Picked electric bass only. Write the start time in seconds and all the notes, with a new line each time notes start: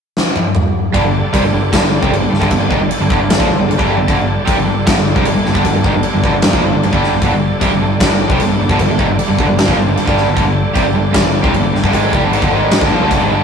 0.94 G1
1.04 G1
1.34 C2
1.43 G1
1.53 G1
1.74 G1
1.82 G1
2.03 C2
2.12 G1
2.22 G1
2.32 G1
2.41 G1
2.51 G1
2.60 G1
2.70 G#1
2.80 G1
2.91 muted picked electric bass stroke
3.00 G1
3.10 G1
3.20 G1
3.31 G1
3.40 A#1
3.50 G1
3.61 G1
3.71 G1
3.80 G1
4.00 G1
4.09 G1
4.19 G1
4.48 C2
4.59 G1
4.69 G1
4.87 G1
4.98 G1
5.16 C2
5.27 G1
5.38 G1
5.47 G1
5.55 G1
5.65 G1
5.76 G1
5.84 G#1
5.96 G1
6.16 G1
6.24 G1
6.35 G1
6.46 G1
6.54 A#1
6.65 G1
6.73 G1
6.84 G1
6.93 G1
7.14 G1
7.22 G1
7.35 G1
7.62 C2
7.72 G1
7.81 G1
8.01 G1
8.09 G1
8.29 C2
8.40 G1
8.50 G1
8.60 G1
8.69 G1
8.79 G1
8.91 G1
9.00 G#1
9.09 G1
9.19 muted picked electric bass stroke
9.30 G1
9.39 G1
9.51 G1
9.61 G1
9.69 A#1
9.79 G1
9.88 G1
9.99 G1
10.07 G1
10.29 G1
10.37 G1
10.48 G1
10.76 C2
10.86 G1
10.96 G1
11.15 G1
11.25 G1
11.44 C2
11.54 G1
11.64 G1
11.74 G1
11.84 G1
11.94 G#1
12.14 C2
12.21 G1
12.30 G#1
12.42 G1
12.51 G#1
12.82 G1
12.90 A#1
13.00 D2
13.11 G1
13.21 G#1
13.30 G1